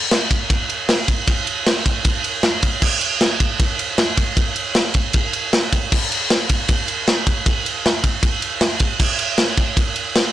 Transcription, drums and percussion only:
0.11 snare loud
0.11 ride loud
0.31 kick medium
0.31 ride medium
0.50 kick loud
0.50 ride loud
0.70 ride medium
0.89 snare loud
0.89 ride loud
1.08 kick medium
1.08 ride medium
1.28 kick loud
1.28 ride loud
1.47 ride medium
1.66 snare loud
1.66 ride loud
1.86 kick medium
1.86 ride medium
2.05 kick loud
2.05 ride loud
2.24 ride medium
2.43 snare loud
2.43 ride loud
2.63 kick medium
2.63 ride medium
2.82 kick loud
2.82 crash loud
3.01 ride medium
3.21 snare loud
3.21 ride loud
3.40 kick medium
3.40 ride medium
3.60 kick loud
3.60 ride loud
3.79 ride medium
3.98 snare loud
3.98 ride loud
4.17 kick medium
4.17 ride medium
4.37 kick loud
4.37 ride loud
4.56 ride medium
4.75 snare loud
4.75 ride loud
4.94 kick medium
4.94 ride medium
5.13 kick loud
5.13 ride loud
5.33 ride medium
5.53 snare loud
5.53 ride loud
5.72 kick medium
5.72 ride medium
5.92 kick loud
5.92 crash loud
6.12 ride medium
6.30 snare loud
6.30 ride loud
6.49 kick medium
6.49 ride medium
6.68 kick loud
6.68 ride loud
6.88 ride medium
7.08 snare loud
7.08 ride loud
7.27 kick medium
7.27 ride medium
7.46 kick loud
7.46 ride loud
7.66 ride medium
7.86 snare loud
7.86 ride loud
8.04 kick medium
8.04 ride medium
8.23 kick loud
8.23 ride loud
8.42 ride medium
8.61 snare loud
8.61 ride loud
8.79 kick medium
8.79 ride medium
9.00 kick loud
9.00 crash loud
9.19 ride medium
9.38 snare loud
9.38 ride loud
9.57 kick medium
9.57 ride medium
9.77 kick loud
9.77 ride loud
9.96 ride medium
10.15 snare loud
10.15 ride loud

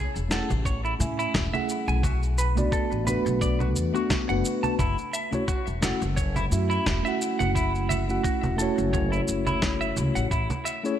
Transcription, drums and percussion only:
0.16 shaker soft
0.31 snare medium
0.31 shaker medium
0.50 low conga medium
0.50 shaker soft
0.65 kick loud
0.65 shaker soft
0.85 shaker soft
1.00 low conga medium
1.00 shaker medium
1.19 shaker soft
1.34 kick loud
1.34 snare medium
1.34 shaker soft
1.54 low conga medium
1.54 shaker soft
1.69 shaker medium
1.88 shaker soft
2.03 kick loud
2.03 low conga medium
2.03 shaker soft
2.23 shaker soft
2.38 shaker medium
2.57 low conga medium
2.57 shaker soft
2.72 kick loud
2.72 shaker soft
2.92 shaker soft
3.07 low conga medium
3.07 shaker medium
3.26 shaker soft
3.41 kick loud
3.41 shaker soft
3.60 low conga medium
3.60 shaker soft
3.76 shaker medium
3.95 shaker soft
4.10 kick loud
4.10 snare medium
4.10 low conga medium
4.10 shaker soft
4.29 shaker soft
4.45 shaker medium
4.64 low conga medium
4.64 shaker soft
4.79 kick loud
4.79 low conga medium
4.79 shaker soft
4.98 shaker soft
5.14 shaker medium
5.33 low conga medium
5.33 shaker soft
5.48 kick loud
5.48 shaker soft
5.67 shaker soft
5.83 snare medium
5.83 low conga medium
5.83 shaker medium
6.02 shaker soft
6.17 kick loud
6.17 shaker soft
6.36 low conga medium
6.36 shaker soft
6.52 shaker medium
6.71 shaker soft
6.86 kick medium
6.86 snare medium
6.86 low conga medium
6.86 shaker soft
7.06 shaker soft
7.21 shaker medium
7.40 low conga medium
7.40 shaker soft
7.55 kick loud
7.55 shaker soft
7.75 shaker soft
7.90 low conga medium
7.90 shaker medium
8.09 shaker soft
8.24 kick loud
8.24 shaker soft
8.43 low conga medium
8.43 shaker soft
8.59 shaker medium
8.78 shaker soft
8.93 kick medium
8.93 low conga medium
8.93 shaker soft
9.13 shaker soft
9.28 shaker medium
9.47 low conga medium
9.47 shaker soft
9.62 kick medium
9.62 snare medium
9.62 shaker soft
9.81 shaker soft
9.97 low conga medium
9.97 shaker medium
10.16 shaker soft
10.31 kick medium
10.31 shaker soft
10.50 low conga medium
10.50 shaker soft
10.66 shaker medium
10.85 shaker soft

